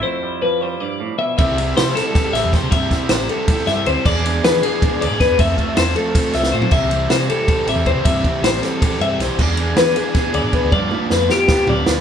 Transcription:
<<
  \new Staff \with { instrumentName = "Clean electric guitar" } { \time 7/8 \key c \major \tempo 4 = 157 c''4 b'8 c''8 d''4 e''8 | e''4 c''8 a'4 e''8 c''8 | e''4 c''8 a'4 e''8 c''8 | d''4 b'8 gis'4 d''8 b'8 |
e''4 c''8 a'4 e''8 c''8 | e''4 c''8 a'4 e''8 c''8 | e''4 c''8 a'4 e''8 c''8 | d''4 b'8 gis'4 d''8 b'8 |
d''4 b'8 g'4 d''8 b'8 | }
  \new Staff \with { instrumentName = "Overdriven electric guitar" } { \time 7/8 \key c \major r2. r8 | <c g c' e' g'>8 <c' e' g'>8 <c g c' e' g'>8 <c' e' g'>8 <g c' e' g'>8 <c g c' e' g'>8 <g c' e' g'>8 | <c g c' e' g'>8 <c' e' g'>8 <c g c' e' g'>8 <c' e' g'>8 <g c' e' g'>8 <c g c' e' g'>8 <g c' e' g'>8 | <e b d' gis'>8 <b d' gis'>8 <e b d' gis'>8 <b d' gis'>8 <e b d' gis'>8 <e b d' gis'>8 <e b d' gis'>8 |
<f a c' f'>8 <a c' f'>8 <f a c' f'>8 <a c' f'>8 <f a c' f'>8 <f a c' f'>8 <f a c' f'>8 | <c e g c' g'>8 <g c' g'>8 <c e g c' g'>8 <g c' g'>8 <e g c' g'>8 <c e g c' g'>8 <e g c' g'>8 | <c e g c' g'>8 <g c' g'>8 <c e g c' g'>8 <g c' g'>8 <e g c' g'>8 <c e g c' g'>8 <e g c' g'>8 | <e b d' gis'>8 <b d' gis'>8 <e b d' gis'>8 <b d' gis'>8 <e b d' gis'>8 <e b d' gis'>8 <e b d' gis'>8 |
<g, d f b f'>8 <f b f'>8 <g, d f b f'>8 <f b f'>8 <d f b f'>8 <g, d f b f'>8 <d f b f'>8 | }
  \new Staff \with { instrumentName = "Clean electric guitar" } { \clef bass \time 7/8 \key c \major << { e'8 g4 g2~ | g2.~ g8 | r2. r8 | r2. r8 |
r2. r8 | r2. r8 | r2. r8 | r2. r8 |
r2. r8 | } \\ { f,4 f4 g,8 a,8 b,8 | r2. r8 | r2. r8 | r2. r8 |
r2. r8 | r2. r8 | r2. r8 | r2. r8 |
r2. r8 | } >> }
  \new Staff \with { instrumentName = "Fingered electric bass" } { \clef bass \time 7/8 \key c \major r2. r8 | c,4 c8 r4 a,,16 e,8 c16 | g,8 r8 a,,8 r4 g,8 d,16 r16 | e,4 e8 r4 d,16 gis,8 e,16 |
f,8 r8 e,8 r4 c,8 a,16 r16 | c,4 c8 r4 a,,16 e,8 c16 | g,8 r8 a,,8 r4 g,8 b,,16 r16 | e,4 e8 r4 d,16 gis,8 d,16 |
g,8 r8 f,8 r4 d,8 d,16 r16 | }
  \new DrumStaff \with { instrumentName = "Drums" } \drummode { \time 7/8 r4 r4 r4. | <bd cymr>8 cymr8 <cymr sn>8 <cymr sn>8 <bd cymr sn>8 <cymr sn>8 <bd cymr sn>8 | <bd cymr>8 <bd cymr sn>8 <cymr sn>8 cymr8 <bd cymr>8 <cymr sn>8 cymr8 | <cymc bd>8 cymr8 <cymr sn>8 cymr8 <bd cymr>8 cymr8 <bd cymr sn>8 |
<bd cymr>8 <bd cymr>8 <cymr sn>8 cymr8 <bd cymr sn>8 <cymr sn>16 sn8 tomfh16 | <cymc bd>8 cymr8 <cymr sn>8 cymr8 <bd cymr>8 cymr8 <bd cymr>8 | <bd cymr>8 <bd cymr>8 <cymr sn>8 <cymr sn>8 <bd cymr>8 cymr8 <cymr sn>8 | <cymc bd>8 cymr8 <cymr sn>8 cymr8 <bd cymr sn>8 cymr8 <bd cymr>8 |
bd8 tommh8 sn8 sn8 <bd sn>8 tomfh8 sn8 | }
>>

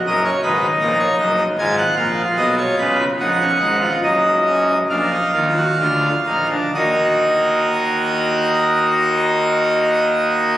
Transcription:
<<
  \new Staff \with { instrumentName = "Pipe organ" } { \time 4/4 \key ees \minor \tempo 4 = 68 << { ees''16 des''16 ces''8 bes'16 des''16 ees''8 aes''16 ges''16 f''8 ees''16 des''16 ces''8 | ges''4 ees''4 f''2 | <bes ees' ees''>1 | } \\ { bes'8 ees'4. f'2 | ees'16 des'16 ees'16 f'16 ees'8 des'8 d'16 ees'16 f'16 ges'16 f'8 ees'16 d'16 | ges'1 | } >> }
  \new Staff \with { instrumentName = "Pipe organ" } { \clef bass \time 4/4 \key ees \minor <ges,, ges,>8 <aes,, aes,>8 <bes,, bes,>8 <ges,, ges,>8 <aes,, aes,>8 <bes,, bes,>8 <ces, ces>8 <des, des>8 | <bes,, bes,>8 <aes,, aes,>8 <ges,, ges,>4 <bes,, bes,>8 <ees, ees>8 <d, d>8 <bes,, bes,>8 | <ees, ees>1 | }
>>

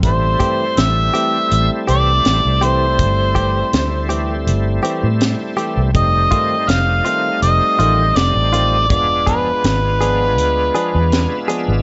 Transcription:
<<
  \new Staff \with { instrumentName = "Harmonica" } { \time 4/4 \key a \minor \tempo 4 = 81 c''4 e''4 e''8 d''4 c''8~ | c''4. r2 r8 | ees''4 f''4 ees''4 d''4 | d''8 b'2. r8 | }
  \new Staff \with { instrumentName = "Tonewheel organ" } { \time 4/4 \key a \minor r1 | r1 | r1 | r2. gis''16 e''8. | }
  \new Staff \with { instrumentName = "Tonewheel organ" } { \time 4/4 \key a \minor <g a c' e'>1~ | <g a c' e'>1 | <g a c' ees'>1 | <gis b d' f'>1 | }
  \new Staff \with { instrumentName = "Clean electric guitar" } { \time 4/4 \key a \minor r8 <e a c' g'>8 r8 <e a c' g'>8 r8 <e a c' g'>8 r8 <e a c' g'>8 | r8 <e a c' g'>8 r8 <e a c' g'>8 r8 <e a c' g'>8 r8 <e a c' g'>8 | r8 <ees a c' f'>8 r8 <ees a c' f'>8 r8 <ees a c' f'>8 r8 <ees a c' f'>8 | r8 <f b d' gis'>8 r8 <f b d' gis'>8 r8 <f b d' gis'>8 r8 <f b d' gis'>8 | }
  \new Staff \with { instrumentName = "Fingered electric bass" } { \clef bass \time 4/4 \key a \minor a,,8 r8 a,,8 r8 a,,16 r16 c,8 a,,16 c,8. | g,,4 d,4 g,,8 r16 a,8 r8 c,16 | f,,8 r8 f,,8 r8 f,,16 r16 a,,8 f,,16 a,,8. | e,,4 gis,,4 d,8 r16 e,8 r8 gis,,16 | }
  \new DrumStaff \with { instrumentName = "Drums" } \drummode { \time 4/4 <hh bd>8 <hh bd>8 <hh sn>8 hh8 hh8 hh8 <hh sn>8 hh8 | <hh bd>8 <hh bd>8 <hh sn>8 hh8 hh8 hh8 <hh sn>8 hh8 | <hh bd>8 <hh bd>8 <hh sn>8 hh8 hh8 hh8 <hh sn>8 hh8 | <hh bd>8 <hh bd>8 <hh sn>8 hh8 hh8 hh8 <hh sn>8 hh8 | }
>>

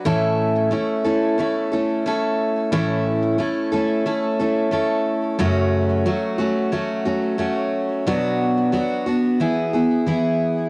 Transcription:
\new Staff \with { instrumentName = "Steel-string acoustic guitar" } { \time 4/4 \key a \major \tempo 4 = 90 <a, e a cis' e' a'>4 <a cis' e' a'>8 <a cis' e' a'>8 <a cis' e' a'>8 <a cis' e' a'>8 <a cis' e' a'>4 | <a, e a cis' e' a'>4 <a cis' e' a'>8 <a cis' e' a'>8 <a cis' e' a'>8 <a cis' e' a'>8 <a cis' e' a'>4 | <fis, cis fis a cis' fis'>4 <fis a cis' fis'>8 <fis a cis' fis'>8 <fis a cis' fis'>8 <fis a cis' fis'>8 <fis a cis' fis'>4 | <b, fis b d' fis'>4 <fis b d' fis'>8 <b d' fis'>8 <e b e' gis'>8 <b e' gis'>8 <e b e' gis'>4 | }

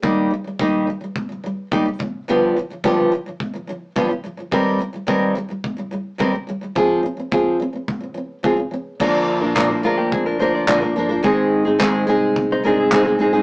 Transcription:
<<
  \new Staff \with { instrumentName = "Clean electric guitar" } { \time 4/4 \key bes \mixolydian \tempo 4 = 107 r1 | r1 | r1 | r1 |
r4. <aes f'>16 <bes g'>16 <c' aes'>16 <d' bes'>16 c''16 <f' d''>4~ <f' d''>16 | r2 r16 <ees' c''>16 <d' bes'>16 <c' aes'>4~ <c' aes'>16 | }
  \new Staff \with { instrumentName = "Nylon-string guitar" } { \clef bass \time 4/4 \key bes \mixolydian <ees g bes ees' g'>8 <ees g>16 <ees g>16 <ees g bes ees' g'>8 <ees g>16 <ees g>8 <ees g>16 <ees g>8 <ees g bes ees' g'>16 <ees g>16 <g, d f>8 | <g, d f b f' g'>8 <g, d f>16 <g, d f>16 <g, d f b f' g'>8 <g, d>16 <g, d f>8 <g, d f>16 <g, d f>8 <g, d f b f' g'>16 <g, d f>16 <g, d f>16 <g, d f>16 | <g, ees g c' g' bes'>8 <g, ees>16 <g, ees g>16 <g, ees g c' g' bes'>8 <g, ees g>16 <g, ees g>8 <g, ees g>16 <g, ees g>8 <g, ees g c' g' bes'>16 <g, ees g>16 <g, ees g>16 <g, ees g>16 | <f c' f' aes'>8 <f c'>16 <f c'>16 <f c' f' aes'>8 <f c'>16 <f c'>8 <f c'>16 <f c'>8 <f c' f' aes'>16 <f c'>16 <f c'>8 |
<bes, d f bes d' bes'>8. <f bes d' bes'>16 <bes, d f bes d' bes'>16 <f bes d' bes'>16 <f bes d' bes'>4 <f bes d' bes'>8 <bes, d f bes d' bes'>16 <f bes d' bes'>16 <f bes d' bes'>16 <f bes d' bes'>16 | <aes, ees aes c' ees' aes'>8. <aes c' ees' aes'>16 <aes, ees aes c' ees' aes'>8 <aes c' ees' aes'>4 <aes c' ees' aes'>8 <aes, ees aes c' ees' aes'>16 <aes c' ees' aes'>16 <aes c' ees' aes'>16 <aes c' ees' aes'>16 | }
  \new Staff \with { instrumentName = "Fingered electric bass" } { \clef bass \time 4/4 \key bes \mixolydian r1 | r1 | r1 | r1 |
bes,,4. d,4 d,4 g,,8 | aes,,4. c,4 c,4 bes,,8 | }
  \new DrumStaff \with { instrumentName = "Drums" } \drummode { \time 4/4 bd4 bd4 bd4 bd8 bd8 | r4 bd4 bd4 bd4 | bd4 bd4 bd4 bd4 | bd4 bd4 bd4 bd4 |
<cymc bd>4 <hc bd>4 bd4 <hc bd>4 | bd4 <hc bd>4 bd4 <hc bd>4 | }
>>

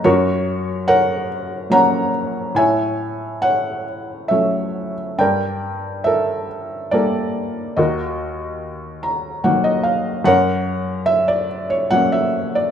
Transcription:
<<
  \new Staff \with { instrumentName = "Felt piano" } { \time 3/4 \key fis \minor \tempo 4 = 71 << { cis''4 fis''4 ais''4 | gis''4 fis''4 e''8. r16 | g''4 e''4 d''4 | dis''4. ais''8 fis''16 dis''16 eis''8 |
fis''4 e''16 d''8 cis''16 fis''16 e''8 d''16 | } \\ { <fis' ais'>4 <ais' cis''>4 <cis'' fis''>4 | <cis'' e''>4 cis''4 cis''4 | <bes' d''>4 <a' bes'>4 <a' bes'>4 | <fis' ais'>4. r4. |
<ais' cis''>4. r4. | } >> }
  \new Staff \with { instrumentName = "Felt piano" } { \clef bass \time 3/4 \key fis \minor fis,2 <fis ais cis'>4 | a,2 <fis a cis'>4 | g,2 <g bes>4 | dis,2 <dis fis ais>4 |
fis,2 <fis ais cis'>4 | }
>>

